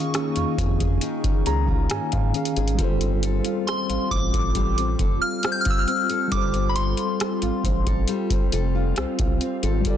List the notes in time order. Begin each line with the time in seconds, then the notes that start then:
Already playing: D#3 A#3 C#4 D#4 F4 G#4 F5 C#6
0.14 C#4, cross-stick, closed hi-hat
0.36 F2 F4, closed hi-hat
0.58 F2 C#4, kick, closed hi-hat
0.80 G#4, kick, closed hi-hat
1.01 D#3, closed hi-hat
1.24 C#4, kick, closed hi-hat
1.46 C#2 G#4 A#5, closed hi-hat
1.68 F4, kick
1.90 G#2 C#4 G#5, cross-stick, closed hi-hat
2.12 G#2 F4 F5, kick, closed hi-hat
2.33 D#3 C#4 G#4, closed hi-hat
2.37 F5
2.45 closed hi-hat
2.56 G#1 G#4, closed hi-hat
2.68 closed hi-hat
2.75 G1 G3 F4, kick, closed hi-hat
2.79 C4 F4 A4
2.84 C5
3.01 C4, closed hi-hat
3.23 A4, closed hi-hat
3.45 F4, closed hi-hat
3.67 C4 C6, cross-stick, closed hi-hat
3.89 A1 F4, closed hi-hat
4.11 A1 C4 D6, kick, closed hi-hat
4.33 A4, kick, closed hi-hat
4.55 A1 G3, kick, closed hi-hat
4.77 C4, closed hi-hat
4.99 F1 A4, kick, closed hi-hat
5.21 F4 F6
5.43 C4, cross-stick, closed hi-hat
5.52 G6
5.61 F6
5.65 F4, kick, closed hi-hat
5.70 E6
5.79 F6
5.87 C4 F6, closed hi-hat
6.10 A4, closed hi-hat
6.28 G3 F4, kick, closed hi-hat
6.32 G1 A4 D6
6.37 C5
6.54 C4, closed hi-hat
6.69 B5
6.75 A4 C6, closed hi-hat
6.97 F4, closed hi-hat
7.20 C4, cross-stick, closed hi-hat
7.42 A1 F4, closed hi-hat
7.64 A1 C4, kick, closed hi-hat
7.86 A4, kick, closed hi-hat
8.08 G3, closed hi-hat
8.30 C4, kick, closed hi-hat
8.52 F1 A4, closed hi-hat
8.75 F4
8.96 C2 C4, cross-stick, closed hi-hat
9.19 C2 F4, kick, closed hi-hat
9.41 C4, closed hi-hat
9.63 G#1 A4, closed hi-hat
9.81 G3 F4, kick
9.85 G1 G3 A4, closed hi-hat
9.90 D5